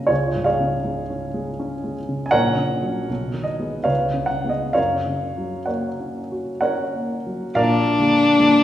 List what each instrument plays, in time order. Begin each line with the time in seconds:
Already playing: grand piano C#3 A#3 C#4 D#5 F5
0.07 grand piano C#2 F4 G#4 C#5
0.35 grand piano G#2
0.44 grand piano G#4 C#5 F5
0.60 grand piano C#3
0.85 grand piano G#3
1.10 grand piano C#4
1.34 grand piano G#3
1.59 grand piano C#4
1.84 grand piano G#3
2.09 grand piano C#3
2.26 grand piano G#5
2.31 grand piano A#1 A#4 C#5 F#5
2.57 grand piano C#3
2.82 grand piano F#3 C#4
3.09 grand piano B1
3.34 grand piano D#3
3.44 grand piano D#5
3.60 grand piano G#3 B3
3.84 grand piano C#2 B4 C#5 F5
4.14 grand piano C#3
4.26 grand piano F#5
4.44 grand piano G#3 B3
4.49 grand piano D#5
4.73 grand piano F#2 A#4 C#5 F5
5.06 grand piano C#3
5.38 grand piano F#3
5.66 grand piano A#3 A#4 C#5 F#5
6.00 grand piano C#4
6.32 grand piano F#4
6.61 grand piano C#4 A#4 C#5 F#5
6.95 grand piano A#3
7.27 grand piano F#3
7.55 grand piano A#1 A#2 A#4 D5 F5, violin D4
7.98 grand piano D3 G#3 A#3
8.39 grand piano D3 G#3 A#3